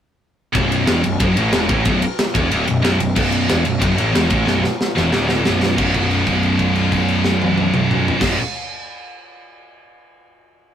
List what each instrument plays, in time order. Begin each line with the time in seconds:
0.53 picked electric bass B0, distorted electric guitar B1, kick, ride
0.72 ride
0.86 picked electric bass E1, distorted electric guitar E2, snare, ride
1.04 picked electric bass B0, distorted electric guitar B1, ride
1.20 picked electric bass F#1, distorted electric guitar F#2, kick, ride
1.36 picked electric bass A1, distorted electric guitar A2, ride
1.53 picked electric bass E1, distorted electric guitar E2, snare, ride
1.69 picked electric bass A1, distorted electric guitar A2, kick, ride
1.85 picked electric bass B0, distorted electric guitar B1, kick, ride
2.02 ride
2.19 snare, ride
2.35 picked electric bass E1, distorted electric guitar E2, kick, ride
2.51 picked electric bass D1, distorted electric guitar D2, ride
2.68 picked electric bass B0, distorted electric guitar B1, ride
2.82 distorted electric guitar B1, snare, ride
2.86 picked electric bass B0
3.00 picked electric bass B0, distorted electric guitar B1, ride
3.15 picked electric bass B0, distorted electric guitar B1, kick, crash
3.32 ride
3.48 picked electric bass E1, distorted electric guitar E2, snare, ride
3.65 picked electric bass B0, distorted electric guitar B1, ride
3.79 picked electric bass F#1, distorted electric guitar F#2, kick, ride
3.95 picked electric bass A1, distorted electric guitar A2, ride
4.12 picked electric bass E1, distorted electric guitar E2, snare, ride
4.28 picked electric bass A1, distorted electric guitar A2, kick, ride
4.45 picked electric bass B0, distorted electric guitar B1, snare
4.64 snare
4.81 snare
4.96 picked electric bass E1, distorted electric guitar E2, snare
5.12 picked electric bass D1, distorted electric guitar D2, snare
5.29 snare
5.45 picked electric bass B0, distorted electric guitar B1, snare
5.63 snare
5.76 picked electric bass B0, distorted electric guitar B1 F#2, kick, crash
5.81 distorted electric guitar B2
5.94 kick, crash
6.11 crash
6.27 kick, crash
6.43 crash
6.59 kick, crash
6.76 crash
6.92 kick, crash
7.09 crash
7.25 snare
7.42 high tom
7.58 high tom
7.74 mid tom
7.91 mid tom
8.08 floor tom
8.19 picked electric bass B0, distorted electric guitar B1 F#2, kick, snare, crash
8.23 distorted electric guitar B2